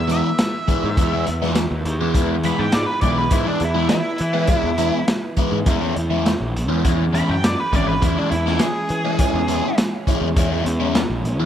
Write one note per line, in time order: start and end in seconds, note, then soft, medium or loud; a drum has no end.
0.00 0.21 E2 medium
0.00 11.45 E3 medium
0.00 5.64 B3 medium
0.00 5.64 E4 medium
0.00 11.45 G#4 medium
0.00 5.64 B4 medium
0.08 0.28 E3 medium
0.08 0.28 G#3 medium
0.08 0.28 B3 loud
0.08 0.28 E4 loud
0.08 1.25 E5 medium
0.08 closed hi-hat medium
0.38 snare loud
0.38 closed hi-hat loud
0.68 0.87 E3 medium
0.68 0.87 G#3 medium
0.68 0.87 B3 medium
0.68 0.88 E4 medium
0.68 kick medium
0.68 closed hi-hat medium
0.84 0.96 G#2 medium
0.97 1.23 E2 loud
0.97 1.13 E3 medium
0.97 1.13 G#3 medium
0.97 1.13 B3 medium
0.97 1.12 E4 medium
0.97 kick loud
0.97 closed hi-hat medium
1.13 1.26 E3 medium
1.13 1.27 G#3 medium
1.13 1.26 B3 medium
1.13 1.27 E4 medium
1.27 1.66 E2 medium
1.27 muted overdriven electric guitar stroke soft
1.27 closed hi-hat medium
1.42 1.62 E3 medium
1.42 1.62 G#3 medium
1.42 1.61 B3 medium
1.42 1.61 E4 medium
1.42 snare soft
1.55 snare loud
1.55 closed hi-hat medium
1.71 1.84 D#2 loud
1.85 2.00 D#2 medium
1.85 closed hi-hat medium
2.00 2.51 E2 medium
2.00 2.13 E3 medium
2.00 2.14 G#3 medium
2.00 2.14 B3 medium
2.00 2.15 E4 loud
2.15 2.34 E3 medium
2.15 2.35 G#3 medium
2.15 2.35 B3 medium
2.15 2.35 E4 loud
2.15 kick loud
2.15 closed hi-hat loud
2.43 2.64 E3 medium
2.43 2.64 G#3 medium
2.43 2.64 B3 medium
2.43 2.64 E4 medium
2.43 2.59 B5 medium
2.43 closed hi-hat medium
2.59 2.85 G#2 medium
2.59 2.74 G5 medium
2.72 2.86 D5 medium
2.72 snare loud
2.72 closed hi-hat loud
2.86 3.01 B4 medium
3.01 3.28 B1 medium
3.01 3.22 E3 medium
3.01 3.22 G#3 medium
3.01 3.23 B3 medium
3.01 3.23 E4 loud
3.01 3.18 D5 medium
3.01 kick medium
3.01 closed hi-hat medium
3.18 3.32 B4 medium
3.31 3.44 G#2 loud
3.31 3.47 E3 medium
3.31 3.46 G#3 medium
3.31 3.45 B3 loud
3.31 3.47 E4 medium
3.31 3.45 E4 medium
3.31 kick loud
3.31 closed hi-hat medium
3.47 3.60 E3 medium
3.47 3.61 G#3 medium
3.47 3.61 B3 medium
3.47 3.62 D4 medium
3.47 3.61 E4 medium
3.60 3.87 E2 medium
3.60 muted overdriven electric guitar stroke soft
3.60 closed hi-hat medium
3.65 3.88 E4 medium
3.75 3.96 E3 medium
3.75 3.95 G#3 medium
3.75 3.95 B3 medium
3.75 3.95 E4 medium
3.89 5.05 E4 loud
3.89 snare loud
3.89 closed hi-hat medium
4.18 4.46 E3 medium
4.18 closed hi-hat medium
4.33 4.47 E3 medium
4.33 4.48 G#3 medium
4.33 4.48 B3 medium
4.33 4.48 E4 medium
4.47 4.69 E3 medium
4.47 4.69 G#3 medium
4.47 4.69 B3 medium
4.47 4.69 E4 medium
4.47 kick loud
4.47 closed hi-hat medium
4.64 4.90 E2 medium
4.78 4.98 E3 medium
4.78 4.98 G#3 medium
4.78 4.99 B3 loud
4.78 4.98 E4 loud
4.78 closed hi-hat medium
5.08 snare loud
5.08 closed hi-hat medium
5.37 5.57 E3 medium
5.37 5.57 G#3 medium
5.37 5.58 B3 loud
5.37 5.58 E4 medium
5.37 kick medium
5.37 closed hi-hat medium
5.52 5.65 G#2 medium
5.66 5.92 E2 loud
5.66 5.80 E3 medium
5.66 5.80 G#3 loud
5.66 11.45 G#3 medium
5.66 5.80 C#4 medium
5.66 11.45 C#4 medium
5.66 5.79 E4 loud
5.66 11.45 C#5 medium
5.66 kick loud
5.66 closed hi-hat medium
5.80 5.94 E3 medium
5.80 5.94 G#3 medium
5.80 5.95 C#4 medium
5.80 5.95 E4 medium
5.95 6.35 E2 medium
5.95 muted overdriven electric guitar stroke soft
5.95 closed hi-hat medium
6.11 6.31 E3 medium
6.11 6.31 G#3 medium
6.11 6.31 C#4 medium
6.11 6.31 E4 medium
6.26 snare medium
6.26 closed hi-hat medium
6.40 6.54 A#1 medium
6.56 6.70 A#1 medium
6.56 closed hi-hat medium
6.69 7.21 E2 medium
6.69 6.82 E3 medium
6.69 6.83 G#3 medium
6.69 6.83 C#4 medium
6.69 6.83 E4 medium
6.84 7.04 E3 medium
6.84 7.04 G#3 medium
6.84 7.04 C#4 medium
6.84 7.04 E4 medium
6.84 kick loud
6.84 closed hi-hat loud
7.13 7.33 E3 medium
7.13 7.33 G#3 loud
7.13 7.34 C#4 medium
7.13 7.34 E4 loud
7.13 7.29 B5 loud
7.13 closed hi-hat medium
7.29 7.55 F#2 loud
7.29 7.45 G5 medium
7.44 7.60 D5 medium
7.44 snare loud
7.44 closed hi-hat loud
7.60 7.75 B4 loud
7.72 7.98 G#1 medium
7.72 7.92 E3 medium
7.72 7.93 G#3 medium
7.72 7.93 C#4 medium
7.72 7.93 E4 medium
7.72 7.88 D5 medium
7.72 kick medium
7.72 closed hi-hat medium
7.88 8.02 B4 medium
8.02 8.15 E2 loud
8.02 8.17 E3 medium
8.02 8.17 G#3 medium
8.02 8.17 C#4 medium
8.02 8.16 E4 medium
8.02 8.19 E4 loud
8.02 kick loud
8.02 closed hi-hat loud
8.17 8.31 E3 medium
8.17 8.32 G#3 medium
8.17 8.32 C#4 medium
8.17 8.31 D4 medium
8.17 8.32 E4 medium
8.31 8.57 E2 medium
8.31 8.60 E4 medium
8.31 muted overdriven electric guitar stroke soft
8.31 closed hi-hat medium
8.46 8.67 E3 medium
8.46 8.66 G#3 medium
8.46 8.66 C#4 medium
8.46 8.66 E4 medium
8.46 snare soft
8.59 9.75 G#4 medium
8.59 snare loud
8.59 closed hi-hat medium
8.89 9.16 E3 loud
8.89 closed hi-hat medium
9.05 9.19 E3 medium
9.05 9.20 G#3 medium
9.05 9.19 C#4 medium
9.05 9.20 E4 loud
9.19 9.39 E3 medium
9.19 9.40 G#3 medium
9.19 9.40 C#4 medium
9.19 9.40 E4 medium
9.19 kick loud
9.19 closed hi-hat loud
9.34 9.60 E2 medium
9.48 9.68 E3 medium
9.48 9.68 G#3 medium
9.48 9.68 C#4 medium
9.48 9.69 E4 loud
9.48 closed hi-hat medium
9.78 snare loud
9.78 closed hi-hat loud
10.07 10.27 E3 medium
10.07 10.28 G#3 medium
10.07 10.28 C#4 medium
10.07 10.28 E4 loud
10.07 kick medium
10.07 closed hi-hat medium
10.21 10.35 E2 medium
10.36 10.62 E2 loud
10.36 10.52 E3 medium
10.36 10.52 G#3 medium
10.36 10.51 C#4 medium
10.36 10.51 E4 loud
10.36 kick loud
10.36 closed hi-hat loud
10.52 10.64 E3 medium
10.52 10.65 G#3 medium
10.52 10.65 C#4 medium
10.52 10.65 E4 medium
10.65 11.04 E2 loud
10.65 muted overdriven electric guitar stroke soft
10.65 closed hi-hat medium
10.80 11.01 E3 medium
10.80 11.01 G#3 medium
10.80 11.01 C#4 medium
10.80 11.00 E4 medium
10.95 snare loud
10.95 closed hi-hat medium
11.10 11.23 A#1 medium
11.24 11.39 A#1 loud
11.24 closed hi-hat medium
11.39 11.45 E2 medium
11.39 11.45 E3 medium
11.39 11.45 G#3 medium
11.39 11.45 C#4 medium
11.39 11.45 E4 loud